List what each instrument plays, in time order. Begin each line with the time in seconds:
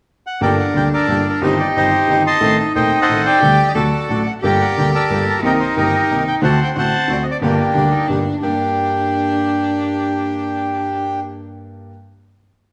0.27 bandoneon F#5
0.41 grand piano G1 G2 G3 A#3 D4 A4, bandoneon A#3 G4 A4 A#4 D5 G5, cello D4
0.59 bandoneon F#5
0.74 grand piano D2 D3 G3 A#3 D4 A4, bandoneon A#3 G4 A4 G5
0.94 bandoneon A4 A#4 D5
1.07 grand piano G1 G2 G3 A#3 D4 A4, bandoneon A#3 G4 A4
1.29 bandoneon A#4
1.41 grand piano G1 G2 D#3 G3 C4 G4, bandoneon G3 C4 D#4 G4 C5, cello D#4
1.45 bandoneon D#4 G4
1.59 bandoneon D5
1.75 grand piano G1 G2 D#3 G3 C4 G4, bandoneon G3 C4 D#4 G4 C5 D#5
2.07 grand piano G1 G2 D#3 G3 C4 G4, bandoneon G3 C4 D#4 G4
2.27 bandoneon D#5 A5 C6
2.40 grand piano A1 A2 D#3 A3 C4 A4, bandoneon C4 D#4 A4, cello D#4
2.60 bandoneon A5
2.75 grand piano D#1 D#2 D#3 A3 C4 A4, bandoneon C4 D#4 A4 C5 D#5 G5
3.02 bandoneon A4 C5 F#5
3.07 grand piano A1 A2 D#3 A3 C4 A4, bandoneon C4 D#4 A4
3.26 bandoneon D5 G5
3.41 grand piano D2 D3 G3 A3 D4 A4, bandoneon D4 G4 A4, cello G4
3.68 bandoneon D#5
3.75 grand piano D2 D3 F#3 A3 D4 A4, bandoneon D4 F#4 A4 D5, cello A4
4.09 grand piano A1 A2 F#3 A3 D4 A4, bandoneon D4 F#4 A4
4.26 bandoneon F#5
4.41 grand piano G1 G2 G3 A#3 D4 A4, bandoneon A#3 G4 A4 D5 G5, cello G4
4.45 bandoneon A#4
4.61 bandoneon F#5
4.77 grand piano D2 D3 G3 A#3 D4 A4, bandoneon A#3 G4 A4 G5
4.95 bandoneon A4 A#4 D5
5.09 grand piano G1 G2 G3 A#3 D4 A4, bandoneon A#3 G4 A4
5.30 bandoneon A5
5.42 grand piano C2 C3 D#3 A#3 C4 G4, bandoneon C4 D#4 A#4 D#5, cello D#4
5.46 bandoneon G5
5.60 bandoneon C5
5.76 grand piano G1 G2 D#3 A#3 C4 G4, bandoneon C4 D#4 G4 A#4 D#5
6.09 grand piano C2 C3 D#3 A#3 C4 G4, bandoneon C4 D#4 A#4
6.28 bandoneon G5
6.42 grand piano D2 D3 A3 C4 F#4, cello C4, bandoneon C4 D4 F#4 C5 F#5 A5
6.63 bandoneon G5
6.74 grand piano A1 A2 D3 A3 C4 F#4, cello C4, bandoneon C4 D4 F#4 C5 F#5
6.80 bandoneon A5
7.08 grand piano D2 D3 A3 C4 F#4, bandoneon C4 D4 F#4
7.12 bandoneon D5
7.23 bandoneon D#5
7.31 bandoneon D5
7.42 grand piano G1 G2 D3 G3 A#3 G4, bandoneon A#3 D4 G4, cello A#3
7.46 bandoneon A#3 G4
7.74 grand piano D2 D3 G3 A#3 G4, bandoneon A#3 D4 G4, cello D4
7.91 cello D#4
8.08 grand piano G1 G2 D3 G3 A#3 G4, bandoneon A#3 D4 G4, cello D4
8.42 grand piano G2 A#3 D4 G4, bandoneon A#3 D4 G4, cello D4